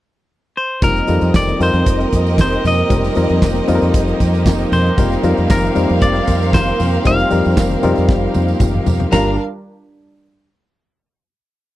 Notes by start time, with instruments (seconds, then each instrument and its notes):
0.57 clean electric guitar C5
0.81 fingered electric bass F1, string section F3 A#3 D#4 G4, reed electric piano G3 C4 D#4 F4 A#4, violin section C4 A#4 D#5, clean electric guitar A#4, kick, closed hi-hat, tambourine, low conga
0.97 closed hi-hat
1.07 fingered electric bass F2, reed electric piano G3 C4 D#4 F4 A4, closed hi-hat, tambourine, high conga
1.21 fingered electric bass F2, closed hi-hat, tambourine
1.34 fingered electric bass F1, clean electric guitar D5, kick, snare, clap, tambourine, muted conga, high conga
1.47 closed hi-hat, high conga
1.60 fingered electric bass F2, reed electric piano G3 C4 D#4 F4 A#4, clean electric guitar C5, closed hi-hat, tambourine, muted conga
1.74 fingered electric bass F2, closed hi-hat
1.86 fingered electric bass F1, kick, closed hi-hat, tambourine, muted conga
2.00 closed hi-hat
2.13 fingered electric bass F2, kick, closed hi-hat, tambourine, muted conga
2.26 closed hi-hat, tambourine
2.38 fingered electric bass F1, clean electric guitar C5, kick, snare, clap, tambourine, muted conga, high conga
2.52 closed hi-hat
2.64 fingered electric bass F2, clean electric guitar D#5, snare, open hi-hat, tambourine, muted conga, low conga
2.79 closed hi-hat
2.90 fingered electric bass F1, reed electric piano G3 C4 D#4 F4 A#4, kick, closed hi-hat, tambourine, muted conga, low conga
3.04 closed hi-hat, tambourine
3.15 fingered electric bass F2, reed electric piano G3 C4 D#4 F4 A#4, closed hi-hat, tambourine, high conga
3.29 fingered electric bass F2, closed hi-hat
3.42 fingered electric bass F1, kick, snare, clap, tambourine, muted conga, high conga
3.54 closed hi-hat, high conga
3.67 fingered electric bass F2, reed electric piano G3 C4 D#4 F4 A4, closed hi-hat, tambourine, muted conga
3.75 reed electric piano A#4
3.81 fingered electric bass F2, closed hi-hat, tambourine
3.94 fingered electric bass F1, kick, closed hi-hat, tambourine
4.08 closed hi-hat
4.20 fingered electric bass F2, kick, closed hi-hat, tambourine
4.34 closed hi-hat, tambourine
4.46 fingered electric bass F1, kick, snare, clap, tambourine, muted conga, high conga
4.60 closed hi-hat
4.72 fingered electric bass F2, clean electric guitar C5, snare, open hi-hat, tambourine, low conga
4.87 closed hi-hat
4.97 fingered electric bass F1, reed electric piano G3 C4 D#4 F4 A#4, violin section C4 A#4 F5, kick, closed hi-hat, tambourine, muted conga, low conga
5.12 closed hi-hat, tambourine
5.23 fingered electric bass F2, reed electric piano G3 C4 D#4 F4 A#4, closed hi-hat, tambourine, muted conga, high conga
5.37 fingered electric bass F2, closed hi-hat
5.50 fingered electric bass F1, clean electric guitar A#4, kick, snare, clap, tambourine, high conga
5.62 closed hi-hat, high conga
5.75 fingered electric bass F2, reed electric piano G3 C4 D#4 F4 A#4, closed hi-hat, tambourine
5.89 fingered electric bass F2, closed hi-hat
6.01 fingered electric bass F1, clean electric guitar D5, kick, closed hi-hat, tambourine
6.15 closed hi-hat
6.27 fingered electric bass F2, kick, closed hi-hat, tambourine, muted conga
6.42 closed hi-hat, tambourine
6.53 fingered electric bass F1, clean electric guitar C5, kick, snare, clap, tambourine, muted conga, high conga
6.67 closed hi-hat
6.80 fingered electric bass F2, snare, open hi-hat, tambourine, muted conga, low conga
6.94 closed hi-hat
7.05 fingered electric bass F1, reed electric piano G3 C4 D#4 F4 C5, clean electric guitar F5, kick, closed hi-hat, tambourine, low conga
7.18 closed hi-hat, tambourine
7.31 fingered electric bass F2, reed electric piano G3 C4 D#4 F4 A#4, closed hi-hat, tambourine, muted conga, high conga
7.44 fingered electric bass F2, closed hi-hat, tambourine
7.57 fingered electric bass F1, kick, snare, clap, tambourine, muted conga, high conga
7.70 closed hi-hat, high conga
7.83 fingered electric bass F2, reed electric piano G3 C4 D#4 F4 A#4, closed hi-hat, tambourine, low conga
7.96 fingered electric bass F2, closed hi-hat, tambourine
8.09 fingered electric bass F1, kick, snare, tambourine
8.34 fingered electric bass F2, high tom, tambourine, muted conga
8.48 tambourine
8.60 fingered electric bass F1, kick, mid tom, tambourine, high conga
8.74 mid tom
8.86 fingered electric bass F2, floor tom, tambourine, muted conga, low conga
9.00 floor tom
9.12 fingered electric bass G1, reed electric piano G3 A#3 D4 F4 A#4, string section G3 D4 F4 A#4, violin section D4 A#4 F5, clean electric guitar A#5, snare, floor tom, tambourine, splash, high conga